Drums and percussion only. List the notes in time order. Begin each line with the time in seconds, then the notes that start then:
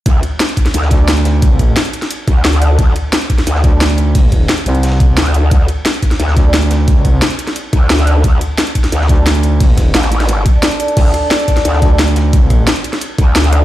0.06 kick, closed hi-hat, ride
0.23 closed hi-hat, ride
0.40 snare, closed hi-hat, ride
0.49 closed hi-hat
0.56 kick, snare, closed hi-hat, ride
0.66 snare, closed hi-hat
0.74 closed hi-hat, ride
0.82 snare
0.90 kick, snare, closed hi-hat, ride
1.08 snare, closed hi-hat, ride
1.17 closed hi-hat
1.25 snare, closed hi-hat, ride
1.42 kick, snare, closed hi-hat, ride
1.59 kick, closed hi-hat, ride
1.76 snare, closed hi-hat, ride
1.85 snare, closed hi-hat
1.93 closed hi-hat, ride
2.02 snare, closed hi-hat
2.11 closed hi-hat, ride
2.28 kick, closed hi-hat, ride
2.44 snare, closed hi-hat, ride
2.53 closed hi-hat
2.62 closed hi-hat, ride
2.79 kick, closed hi-hat, ride
2.96 closed hi-hat, ride
3.13 snare, closed hi-hat, ride
3.21 closed hi-hat
3.29 kick, snare, closed hi-hat, ride
3.38 snare, closed hi-hat
3.47 closed hi-hat, ride
3.55 snare
3.64 kick, snare, closed hi-hat, ride
3.80 snare, closed hi-hat, ride
3.89 closed hi-hat
3.97 closed hi-hat, ride
4.15 kick, closed hi-hat, open hi-hat
4.32 kick, closed hi-hat, ride
4.49 snare, closed hi-hat, ride
4.58 snare, closed hi-hat
4.66 closed hi-hat, ride
4.75 closed hi-hat
4.83 snare, closed hi-hat, ride
4.87 snare, ride
4.91 snare, ride
5.00 kick, closed hi-hat, ride
5.17 snare, closed hi-hat, ride
5.26 closed hi-hat
5.34 closed hi-hat, ride
5.51 kick, closed hi-hat, ride
5.68 closed hi-hat, ride
5.85 snare, closed hi-hat, ride
5.94 closed hi-hat
6.03 kick, snare, closed hi-hat, ride
6.11 snare, closed hi-hat
6.20 closed hi-hat, ride
6.28 snare
6.37 kick, snare, closed hi-hat, ride
6.54 snare, closed hi-hat, ride
6.62 closed hi-hat
6.70 snare, closed hi-hat, ride
6.88 kick, snare, closed hi-hat, ride
7.05 kick, closed hi-hat, ride
7.22 snare, closed hi-hat, ride
7.30 snare, closed hi-hat
7.39 closed hi-hat, ride
7.47 snare, closed hi-hat
7.56 closed hi-hat, ride
7.73 kick, closed hi-hat, ride
7.90 snare, closed hi-hat, ride
7.99 closed hi-hat
8.07 closed hi-hat, ride
8.24 kick, closed hi-hat, ride
8.41 closed hi-hat, ride
8.58 snare, closed hi-hat, ride
8.67 closed hi-hat
8.75 kick, closed hi-hat, ride
8.84 snare, closed hi-hat
8.92 closed hi-hat, ride
9.01 snare
9.08 kick, snare, closed hi-hat, ride
9.26 snare, closed hi-hat, ride
9.35 closed hi-hat
9.43 closed hi-hat, ride
9.60 kick, closed hi-hat, open hi-hat
9.77 kick, snare, closed hi-hat, ride
9.95 snare, closed hi-hat
10.02 snare, closed hi-hat, ride
10.12 closed hi-hat
10.20 snare, closed hi-hat, ride
10.29 closed hi-hat, ride
10.46 kick, closed hi-hat, ride
10.63 snare, closed hi-hat
10.71 closed hi-hat
10.80 closed hi-hat, ride
10.88 closed hi-hat
10.97 kick, closed hi-hat, crash, ride
11.14 cross-stick, closed hi-hat, ride
11.30 snare, closed hi-hat, ride
11.39 closed hi-hat
11.48 kick, snare, closed hi-hat, ride
11.57 cross-stick, snare, closed hi-hat
11.65 closed hi-hat, ride
11.73 snare
11.82 kick, snare, closed hi-hat, ride
11.99 snare, closed hi-hat, ride
12.08 closed hi-hat
12.16 snare, closed hi-hat, ride
12.33 kick, snare, closed hi-hat, ride
12.50 kick, cross-stick, closed hi-hat, ride
12.67 snare, closed hi-hat, ride
12.76 snare, closed hi-hat
12.84 closed hi-hat, ride
12.93 cross-stick, snare, closed hi-hat
13.01 closed hi-hat, ride
13.18 kick, closed hi-hat, ride
13.36 snare, closed hi-hat, ride
13.44 closed hi-hat
13.53 cross-stick, closed hi-hat, ride